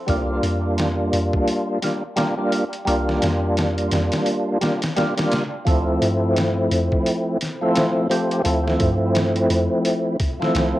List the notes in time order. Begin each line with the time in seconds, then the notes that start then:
0.07 C2 G3 A#3 D4 F4, kick, open hi-hat
0.43 F2, open hi-hat
0.78 snare, open hi-hat
1.13 F2, open hi-hat
1.33 kick
1.48 open hi-hat
1.82 G3 A#3 D4 F4, snare, open hi-hat
2.16 G3 A#3 D4 F4, snare, open hi-hat
2.37 G3 A#3 D4 F4
2.52 open hi-hat
2.73 closed hi-hat
2.85 C2 G3 A#3 D4 F4, open hi-hat
3.09 snare
3.22 F2, snare, open hi-hat
3.57 snare, open hi-hat
3.78 closed hi-hat
3.91 F2, snare, open hi-hat
4.12 snare, open hi-hat
4.26 open hi-hat
4.61 G3 A#3 D4 F4, snare, open hi-hat
4.82 snare, open hi-hat
4.96 G3 A#3 D4 F4, snare, open hi-hat
5.17 G3 A#3 D4 F4, snare, open hi-hat
5.32 snare, open hi-hat
5.65 D2 F3 A3 C4 E4, kick, open hi-hat
6.02 G2, open hi-hat
6.37 snare, open hi-hat
6.71 F2, open hi-hat
6.92 kick
7.06 open hi-hat
7.41 snare, open hi-hat
7.61 F3 A3 C4 E4
7.75 snare, open hi-hat
8.10 F3 A3 C4 G4, open hi-hat
8.31 closed hi-hat
8.44 D2 F3 A3 C4 E4, open hi-hat
8.68 snare
8.80 G2, kick, open hi-hat
9.15 snare, open hi-hat
9.36 closed hi-hat
9.50 F2, open hi-hat
9.85 open hi-hat
10.20 kick, open hi-hat
10.40 F3 A3 C4 E4, snare
10.55 C2, snare, open hi-hat